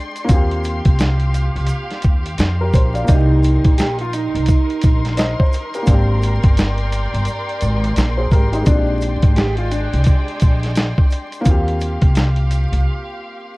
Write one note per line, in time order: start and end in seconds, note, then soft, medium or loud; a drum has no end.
0.00 0.23 G#3 medium
0.00 0.26 G#3 medium
0.00 0.25 C4 medium
0.00 0.26 D4 medium
0.00 0.31 G4 medium
0.00 0.26 D5 medium
0.00 0.26 G5 medium
0.00 3.05 C6 medium
0.16 closed hi-hat soft
0.16 shaker soft
0.24 3.02 A#3 medium
0.24 3.04 C4 medium
0.29 0.79 D#2 loud
0.29 3.05 F4 medium
0.29 3.06 G4 medium
0.29 3.06 F5 medium
0.29 kick loud
0.29 closed hi-hat loud
0.29 shaker medium
0.34 2.03 G4 medium
0.51 closed hi-hat soft
0.64 closed hi-hat medium
0.64 shaker soft
0.85 1.47 C2 medium
0.85 kick loud
0.85 closed hi-hat medium
0.99 snare loud
0.99 closed hi-hat medium
0.99 shaker medium
1.20 closed hi-hat soft
1.34 closed hi-hat medium
1.34 shaker medium
1.55 1.67 C2 medium
1.55 closed hi-hat medium
1.67 closed hi-hat medium
1.67 shaker medium
1.91 snare soft
1.91 closed hi-hat soft
2.02 2.35 D#2 medium
2.02 kick medium
2.02 closed hi-hat medium
2.02 shaker medium
2.26 closed hi-hat medium
2.38 2.70 F2 loud
2.38 snare loud
2.38 closed hi-hat medium
2.38 shaker medium
2.61 2.74 G4 medium
2.61 2.73 A#4 medium
2.73 3.04 A#1 medium
2.73 2.94 C5 medium
2.73 kick medium
2.73 closed hi-hat medium
2.73 shaker medium
2.94 3.06 D5 medium
2.94 3.28 F5 medium
2.94 closed hi-hat soft
2.94 shaker soft
3.04 5.12 A#3 medium
3.04 5.13 D5 medium
3.04 closed hi-hat loud
3.04 shaker medium
3.09 3.58 C2 loud
3.09 3.75 D#4 loud
3.09 5.85 D#4 medium
3.09 5.15 D#4 medium
3.09 8.63 A#4 medium
3.09 13.57 C6 medium
3.09 kick loud
3.14 5.17 G4 medium
3.43 closed hi-hat medium
3.43 shaker medium
3.64 4.26 A#1 medium
3.64 kick loud
3.64 closed hi-hat medium
3.78 3.98 G4 medium
3.78 snare loud
3.78 closed hi-hat medium
3.78 shaker medium
3.99 4.13 F4 medium
3.99 closed hi-hat soft
4.13 5.84 D#4 medium
4.13 closed hi-hat medium
4.13 shaker medium
4.35 4.47 C2 medium
4.35 closed hi-hat medium
4.46 kick medium
4.46 closed hi-hat medium
4.46 shaker medium
4.70 closed hi-hat soft
4.81 5.33 A#1 medium
4.81 kick medium
4.81 closed hi-hat medium
4.81 shaker medium
5.05 snare soft
5.05 closed hi-hat medium
5.17 5.38 C5 medium
5.17 5.38 D#5 medium
5.17 snare loud
5.17 closed hi-hat loud
5.17 shaker medium
5.39 5.72 C5 medium
5.39 kick medium
5.52 closed hi-hat medium
5.52 shaker medium
5.74 5.91 G4 medium
5.74 6.08 A#4 medium
5.74 closed hi-hat soft
5.74 shaker soft
5.83 8.60 A#3 medium
5.83 8.62 C4 medium
5.87 6.37 G#1 loud
5.87 7.94 D4 medium
5.87 8.64 D5 medium
5.87 8.64 G5 medium
5.87 kick loud
5.87 closed hi-hat loud
5.87 shaker medium
5.92 7.95 G4 medium
6.22 closed hi-hat medium
6.22 shaker medium
6.44 7.05 G1 medium
6.44 kick loud
6.44 closed hi-hat medium
6.57 snare loud
6.57 closed hi-hat loud
6.57 shaker medium
6.78 closed hi-hat soft
6.93 closed hi-hat medium
6.93 shaker medium
7.14 7.26 G1 medium
7.14 closed hi-hat medium
7.25 closed hi-hat medium
7.25 shaker medium
7.49 closed hi-hat soft
7.61 7.93 G#1 loud
7.61 closed hi-hat medium
7.61 shaker medium
7.84 closed hi-hat medium
7.96 8.28 A#1 loud
7.96 snare loud
7.96 closed hi-hat loud
7.96 shaker medium
8.18 8.31 G#4 medium
8.18 8.31 C5 medium
8.31 8.63 G#1 medium
8.31 8.51 G4 medium
8.31 8.53 A#4 medium
8.31 kick medium
8.31 closed hi-hat medium
8.31 shaker medium
8.53 8.86 D#4 medium
8.53 8.76 G4 medium
8.53 closed hi-hat soft
8.53 shaker soft
8.62 11.39 G#3 medium
8.62 11.41 C4 medium
8.66 9.16 A#1 loud
8.66 11.43 G#3 medium
8.66 9.32 D4 loud
8.66 11.42 D4 medium
8.66 11.43 D5 medium
8.66 11.43 G5 medium
8.66 kick loud
8.66 closed hi-hat loud
8.66 shaker medium
8.71 8.77 F4 medium
8.78 11.47 G4 medium
9.01 closed hi-hat medium
9.01 shaker medium
9.22 9.84 G#1 medium
9.22 kick loud
9.22 closed hi-hat medium
9.36 9.56 G4 medium
9.36 snare loud
9.36 closed hi-hat medium
9.36 shaker medium
9.57 9.70 F4 medium
9.57 closed hi-hat soft
9.71 11.42 D4 medium
9.71 closed hi-hat medium
9.71 shaker medium
9.93 10.05 C2 medium
9.93 closed hi-hat medium
10.04 kick medium
10.04 closed hi-hat medium
10.04 shaker medium
10.28 closed hi-hat soft
10.40 10.91 A#1 loud
10.40 kick medium
10.40 closed hi-hat medium
10.40 shaker medium
10.63 snare soft
10.63 closed hi-hat medium
10.75 snare loud
10.75 closed hi-hat loud
10.75 shaker medium
10.98 kick medium
11.10 closed hi-hat medium
11.10 shaker medium
11.32 closed hi-hat soft
11.32 shaker soft
11.41 13.57 A#3 medium
11.41 13.57 C4 medium
11.45 11.95 D#2 loud
11.45 13.57 F4 medium
11.45 13.57 G4 medium
11.45 13.57 F5 medium
11.45 kick loud
11.45 closed hi-hat loud
11.45 shaker medium
11.51 13.19 G4 medium
11.68 closed hi-hat soft
11.81 closed hi-hat medium
11.81 shaker soft
12.01 12.63 C2 medium
12.01 kick loud
12.01 closed hi-hat medium
12.15 snare loud
12.15 closed hi-hat medium
12.15 shaker medium
12.36 closed hi-hat soft
12.51 closed hi-hat medium
12.51 shaker medium
12.72 12.84 C2 medium
12.72 closed hi-hat medium